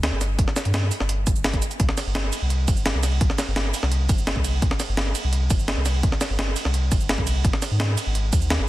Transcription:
Already playing: sub bass D2
0.03 snare, closed hi-hat
0.12 sub bass G1
0.21 snare, closed hi-hat, cabasa
0.39 sub bass G1, kick, closed hi-hat
0.48 snare
0.56 snare, closed hi-hat, cabasa
0.65 sub bass G2, closed hi-hat
0.74 snare, closed hi-hat, cabasa
0.91 open hi-hat, cabasa
1.00 sub bass G1, snare
1.09 closed hi-hat
1.27 sub bass G1, kick, closed hi-hat, cabasa
1.36 cabasa
1.44 snare, closed hi-hat
1.53 sub bass G1, kick, closed hi-hat
1.62 closed hi-hat, cabasa
1.71 closed hi-hat, cabasa
1.80 sub bass C2, kick, closed hi-hat
1.89 snare
1.97 snare, closed hi-hat, ride, cabasa
2.06 sub bass G1
2.15 snare, closed hi-hat
2.33 closed hi-hat, ride, cabasa
2.42 sub bass C2
2.50 closed hi-hat
2.68 sub bass G1, kick, closed hi-hat, ride, cabasa
2.77 cabasa
2.86 snare, closed hi-hat
2.94 sub bass C2
3.03 snare, closed hi-hat, ride, cabasa
3.21 sub bass C2, kick, closed hi-hat
3.30 snare
3.38 snare, closed hi-hat, ride, cabasa
3.48 sub bass G1
3.56 snare, closed hi-hat
3.74 open hi-hat, ride, cabasa
3.83 sub bass C2, snare
3.92 closed hi-hat
4.09 sub bass G1, kick, closed hi-hat, ride, cabasa
4.18 cabasa
4.27 snare, closed hi-hat
4.36 sub bass C2, kick
4.45 closed hi-hat, ride, cabasa
4.62 sub bass C2, kick, closed hi-hat
4.71 snare
4.80 snare, closed hi-hat, ride, cabasa
4.89 sub bass G1
4.97 snare, closed hi-hat
5.15 closed hi-hat, ride, cabasa
5.24 sub bass C2
5.33 closed hi-hat
5.50 sub bass G1, kick, closed hi-hat, ride, cabasa
5.59 cabasa
5.68 snare, closed hi-hat
5.77 sub bass C2
5.86 snare, closed hi-hat, ride, cabasa
6.03 sub bass C2, kick, closed hi-hat
6.12 snare
6.21 snare, closed hi-hat, ride, cabasa
6.30 sub bass G1
6.39 snare, closed hi-hat
6.56 open hi-hat, ride, cabasa
6.65 sub bass C2, snare
6.74 closed hi-hat
6.92 sub bass G1, kick, closed hi-hat, ride, cabasa
7.01 cabasa
7.09 snare, closed hi-hat
7.18 sub bass C2, kick
7.27 closed hi-hat, ride, cabasa
7.45 sub bass G#1, kick, closed hi-hat
7.53 snare
7.62 snare, closed hi-hat, ride, cabasa
7.71 sub bass G#2
7.80 snare, closed hi-hat
7.98 closed hi-hat, ride, cabasa
8.06 sub bass G#1
8.15 closed hi-hat
8.33 sub bass D#2, kick, closed hi-hat, ride, cabasa
8.42 cabasa
8.50 snare, closed hi-hat
8.59 sub bass G#1

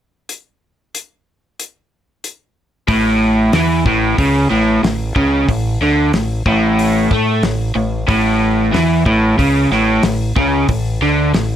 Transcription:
0.29 closed hi-hat
0.95 closed hi-hat
1.60 closed hi-hat
2.24 closed hi-hat
2.88 fingered electric bass A1, overdriven electric guitar A2, kick, open hi-hat
3.53 fingered electric bass E2, overdriven electric guitar E3, snare, open hi-hat
3.86 fingered electric bass A1, overdriven electric guitar A2, kick
4.18 fingered electric bass C#2, overdriven electric guitar C#3, kick, open hi-hat
4.50 fingered electric bass A1, overdriven electric guitar A2
4.83 fingered electric bass A1, overdriven electric guitar A2, snare, open hi-hat
5.16 fingered electric bass C#2, overdriven electric guitar C#3, kick
5.48 fingered electric bass A1, overdriven electric guitar A2, kick, open hi-hat
5.81 fingered electric bass D2, overdriven electric guitar D3
6.13 fingered electric bass A1, overdriven electric guitar A2, snare, open hi-hat
6.46 fingered electric bass A1, overdriven electric guitar A2, kick
6.79 open hi-hat
7.11 fingered electric bass A2, overdriven electric guitar A3, kick, snare
7.43 fingered electric bass A1, overdriven electric guitar A2, snare, open hi-hat
7.76 fingered electric bass A1, overdriven electric guitar A2
8.08 fingered electric bass A1, overdriven electric guitar A2, kick, open hi-hat
8.73 fingered electric bass E2, overdriven electric guitar E3, snare, open hi-hat
9.06 fingered electric bass A1, overdriven electric guitar A2, kick
9.38 fingered electric bass C#2, overdriven electric guitar C#3, kick, open hi-hat
9.71 fingered electric bass A1, overdriven electric guitar A2, snare
10.03 fingered electric bass A1, overdriven electric guitar A2, snare, open hi-hat
10.36 fingered electric bass C#2, overdriven electric guitar C#3, kick
10.68 fingered electric bass A1, overdriven electric guitar A2, kick, open hi-hat
11.02 fingered electric bass D2, overdriven electric guitar D3
11.34 fingered electric bass A1, overdriven electric guitar A2, snare, open hi-hat

